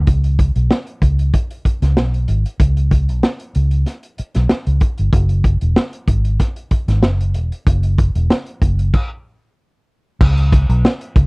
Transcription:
0.07 fingered electric bass C#2, kick, closed hi-hat
0.24 closed hi-hat
0.39 kick, closed hi-hat
0.56 fingered electric bass B1, closed hi-hat
0.71 snare
0.87 closed hi-hat
1.02 fingered electric bass C#2, kick, closed hi-hat
1.19 closed hi-hat
1.34 kick, closed hi-hat
1.51 closed hi-hat
1.65 muted fingered electric bass stroke, kick, closed hi-hat
1.82 fingered electric bass C#2, snare, closed hi-hat
1.97 fingered electric bass B1, snare
2.14 closed hi-hat
2.28 fingered electric bass G#1, closed hi-hat
2.46 closed hi-hat
2.60 fingered electric bass C#2, kick, closed hi-hat
2.77 closed hi-hat
2.91 kick, closed hi-hat
3.09 fingered electric bass B1, closed hi-hat
3.23 snare
3.40 closed hi-hat
3.55 fingered electric bass C#2, closed hi-hat
3.71 closed hi-hat
3.86 snare, closed hi-hat
4.03 closed hi-hat
4.18 muted fingered electric bass stroke, closed hi-hat
4.35 fingered electric bass B1, snare, closed hi-hat
4.49 muted fingered electric bass stroke, snare
4.67 fingered electric bass C#2, closed hi-hat
4.81 kick, closed hi-hat
4.98 fingered electric bass G1, closed hi-hat
5.13 fingered electric bass F#1, kick, closed hi-hat
5.29 closed hi-hat
5.44 kick, closed hi-hat
5.61 fingered electric bass E1, closed hi-hat
5.76 snare
5.93 closed hi-hat
6.08 fingered electric bass G#1, kick, closed hi-hat
6.25 closed hi-hat
6.40 kick, snare, closed hi-hat
6.56 closed hi-hat
6.71 muted fingered electric bass stroke, kick, closed hi-hat
6.88 fingered electric bass G#1, snare, closed hi-hat
7.03 fingered electric bass F#1, snare
7.20 closed hi-hat
7.34 fingered electric bass E1, closed hi-hat
7.52 closed hi-hat
7.67 fingered electric bass F#1, kick, closed hi-hat
7.83 closed hi-hat
7.98 kick, closed hi-hat
8.15 fingered electric bass E1, closed hi-hat
8.30 snare
8.46 closed hi-hat
8.62 fingered electric bass F#1, kick, closed hi-hat
8.79 closed hi-hat
8.94 kick, crash
10.21 fingered electric bass C#2, kick, crash
10.38 closed hi-hat
10.52 kick, closed hi-hat
10.69 fingered electric bass B1, closed hi-hat
10.85 snare
11.01 closed hi-hat
11.16 fingered electric bass C#2, kick, closed hi-hat

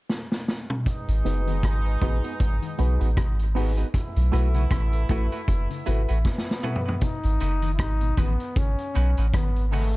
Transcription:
0.10 snare
0.32 snare
0.48 snare
0.70 mid tom
0.85 horn section G#3 B3 D#4, kick, closed hi-hat
1.08 sub bass G#1, closed hi-hat
1.24 sub bass F#1, clean electric guitar C#3 B3 D#4 F#4 B4, upright piano D#4 F#4 G#4 B4, closed hi-hat
1.46 clean electric guitar D#3 B3 D#4 F#4 B4, closed hi-hat
1.62 sub bass G#1, clean electric guitar C#3, kick, cross-stick, closed hi-hat
1.85 upright piano G#4 B4, closed hi-hat
2.01 sub bass A1, clean electric guitar B2 B3 D#4 F#4 B4, upright piano D#4 F#4 G#4 B4, kick, cross-stick, closed hi-hat
2.24 clean electric guitar B3 D#4 F#4 B4, closed hi-hat
2.40 sub bass G#1, kick, closed hi-hat
2.62 clean electric guitar D#3, closed hi-hat
2.78 sub bass B1, clean electric guitar C#3 B3 D#4 F#4 B4, upright piano D#4 F#4 G#4 B4, closed hi-hat
3.00 sub bass A1, clean electric guitar B3 D#4 F#4 B4, closed hi-hat
3.17 sub bass G#1, clean electric guitar B2, kick, cross-stick, closed hi-hat
3.39 closed hi-hat
3.55 clean electric guitar G#2 B3 D#4 F#4 B4, upright piano D#4 F#4 G#4 B4, open hi-hat
3.77 clean electric guitar B3 D#4 F#4 B4, closed hi-hat
3.94 horn section A3 B3 E4, kick, closed hi-hat
4.16 sub bass B1, closed hi-hat
4.32 sub bass B1, clean electric guitar B2 A3 E4 F#4 B4, upright piano E4 F#4 A4 B4, closed hi-hat
4.54 clean electric guitar C#3 A3 E4 F#4 B4, closed hi-hat
4.71 sub bass A1, clean electric guitar B2, kick, cross-stick, closed hi-hat
4.93 upright piano A4 B4, closed hi-hat
5.09 sub bass A1, clean electric guitar A2 A3 E4 F#4 B4, upright piano E4 F#4 A4 B4, kick, closed hi-hat
5.32 clean electric guitar A3 E4 F#4 B4, closed hi-hat
5.48 sub bass F#1, kick, closed hi-hat
5.70 clean electric guitar C#3, closed hi-hat
5.86 sub bass G#1, clean electric guitar B2 A3 E4 F#4 B4, upright piano E4 F#4 A4 B4, closed hi-hat
6.08 sub bass A1, clean electric guitar A3 E4 F#4 B4, closed hi-hat
6.25 trombone B3, kick, snare
6.38 snare
6.51 snare
6.63 clean electric guitar A3 E4 F#4 B4, upright piano E4 F#4 A4 B4, mid tom
6.76 floor tom
6.86 clean electric guitar A3 E4 F#4 B4, floor tom
7.01 clean electric guitar B2, trombone D#4, kick, closed hi-hat
7.23 sub bass G#1, closed hi-hat
7.40 sub bass F#1, clean electric guitar C#3 G#3 D#4 F#4 B4, upright piano D#4 F#4 G#4 B4, closed hi-hat
7.62 clean electric guitar D#3 G#3 D#4 F#4 B4, closed hi-hat
7.74 trombone E4
7.79 sub bass G#1, trombone D#4, kick, cross-stick, closed hi-hat
8.01 clean electric guitar B2, closed hi-hat
8.17 sub bass A1, clean electric guitar D#3 G#3 D#4 F#4 B4, trombone B3, upright piano D#4 F#4 G#4 B4, kick, cross-stick, closed hi-hat
8.39 upright piano G#4 B4, closed hi-hat
8.56 sub bass G#1, clean electric guitar C#3, trombone C#4, kick, closed hi-hat
8.79 closed hi-hat
8.94 sub bass B1, clean electric guitar B2 G#3 D#4 F#4 B4, upright piano D#4 F#4 G#4 B4, closed hi-hat
9.17 sub bass A1, clean electric guitar G#3 D#4 F#4 B4, closed hi-hat
9.29 trombone C#4
9.33 sub bass G#1, clean electric guitar D#3, trombone B3, kick, cross-stick, closed hi-hat
9.56 closed hi-hat
9.67 trombone B3
9.71 clean electric guitar C#3 G#3 D#4 F#4 B4, trombone A3, upright piano D#4 F#4 G#4 B4, open hi-hat
9.93 upright piano G#4 B4, closed hi-hat

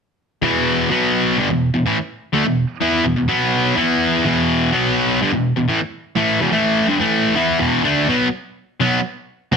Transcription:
0.42 distorted electric guitar E2 B2 E3
0.90 distorted electric guitar B2 F#3 B3
1.38 distorted electric guitar G2 D3
1.50 distorted electric guitar E2 B2
1.74 distorted electric guitar E2 B2
1.86 distorted electric guitar A2 E3
1.98 muted distorted electric guitar stroke
2.33 distorted electric guitar D3 A3
2.45 distorted electric guitar E2 B2
2.80 distorted electric guitar E3 B3 E4
3.04 distorted electric guitar E2 B2
3.16 distorted electric guitar E2 B2
3.28 distorted electric guitar B2 F#3 B3
3.76 distorted electric guitar E3 B3 E4
4.24 distorted electric guitar E2 B2 E3
4.72 distorted electric guitar B2 F#3 B3
5.21 distorted electric guitar G2 D3
5.33 distorted electric guitar E2 B2
5.56 distorted electric guitar E2 B2
5.68 distorted electric guitar A2 E3
5.80 muted distorted electric guitar stroke
6.16 distorted electric guitar A2 E3 A3
6.40 distorted electric guitar E2 B2
6.52 distorted electric guitar A2 E3 A3
6.88 distorted electric guitar G2 D3
6.99 distorted electric guitar A2 E3 A3
7.35 distorted electric guitar E3 B3 E4
7.59 distorted electric guitar E2 B2 E3
7.83 distorted electric guitar D3 A3 D4
8.08 distorted electric guitar B2 F#3 B3
8.80 distorted electric guitar B2 F#3 B3
9.52 distorted electric guitar B2 F#3 B3

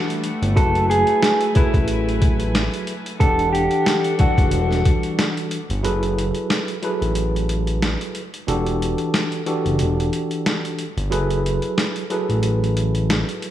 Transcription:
Already playing: tine electric piano E3 G3 D4 F#4 A4, string section E3 G3 A3 D4 F#5
0.10 closed hi-hat
0.24 closed hi-hat
0.42 analog synth bass G1, closed hi-hat
0.55 analog synth bass F#1, tine electric piano F#3 A3 E4 F#4 B4, string section F#3 E4 B4 G#5, clean electric guitar A4, kick, closed hi-hat
0.75 closed hi-hat
0.90 clean electric guitar G#4, closed hi-hat
1.07 closed hi-hat
1.23 snare, closed hi-hat
1.41 closed hi-hat
1.55 tine electric piano F#3 E4 G#4 A4 B4, clean electric guitar E4, kick, closed hi-hat
1.74 analog synth bass A1, kick, closed hi-hat
1.88 closed hi-hat
2.09 closed hi-hat
2.22 kick, closed hi-hat
2.40 closed hi-hat
2.55 snare, closed hi-hat
2.74 closed hi-hat
2.87 closed hi-hat
3.06 closed hi-hat
3.19 analog synth bass E1, tine electric piano E3 D4 G4 A4 F#5, string section E3 G3 D4 A4 F#5, clean electric guitar A4, kick, closed hi-hat
3.39 closed hi-hat
3.53 clean electric guitar G4, closed hi-hat
3.71 closed hi-hat
3.86 snare, closed hi-hat
4.04 closed hi-hat
4.18 tine electric piano E3 G3 D4 F#4 A4, clean electric guitar F#4, kick, closed hi-hat
4.38 analog synth bass F#1, kick, closed hi-hat
4.51 analog synth bass E1, closed hi-hat
4.71 snare, closed hi-hat
4.85 kick, closed hi-hat
5.03 closed hi-hat
5.19 snare, closed hi-hat
5.37 closed hi-hat
5.51 closed hi-hat
5.70 analog synth bass G1, closed hi-hat
5.83 analog synth bass F#1, tine electric piano F#3 E4 G#4 A4 B4, closed hi-hat
6.03 closed hi-hat
6.19 closed hi-hat
6.35 closed hi-hat
6.50 snare, closed hi-hat
6.68 closed hi-hat
6.82 tine electric piano F#3 E4 G#4 A4 B4, closed hi-hat
7.01 analog synth bass A1, closed hi-hat
7.15 closed hi-hat
7.36 closed hi-hat
7.49 closed hi-hat
7.67 closed hi-hat
7.82 snare, closed hi-hat
8.01 closed hi-hat
8.15 closed hi-hat
8.34 closed hi-hat
8.47 analog synth bass E1, tine electric piano E3 D4 F#4 G4 A4, closed hi-hat
8.66 closed hi-hat
8.82 closed hi-hat
8.98 closed hi-hat
9.14 snare, closed hi-hat
9.32 closed hi-hat
9.46 tine electric piano E3 D4 F#4 G4 A4, closed hi-hat
9.65 analog synth bass F#1, closed hi-hat
9.79 analog synth bass E1, closed hi-hat
10.00 closed hi-hat
10.13 closed hi-hat
10.31 closed hi-hat
10.46 snare, closed hi-hat
10.65 closed hi-hat
10.79 closed hi-hat
10.97 analog synth bass G1, closed hi-hat
11.10 analog synth bass F#1, tine electric piano F#3 E4 G#4 A4 B4, closed hi-hat
11.30 closed hi-hat
11.46 closed hi-hat
11.62 closed hi-hat
11.78 snare, closed hi-hat
11.96 closed hi-hat
12.10 tine electric piano F#3 E4 G#4 A4 B4, closed hi-hat
12.29 analog synth bass A1, closed hi-hat
12.43 closed hi-hat
12.64 closed hi-hat
12.77 closed hi-hat
12.95 closed hi-hat
13.10 snare, closed hi-hat
13.29 closed hi-hat
13.42 closed hi-hat

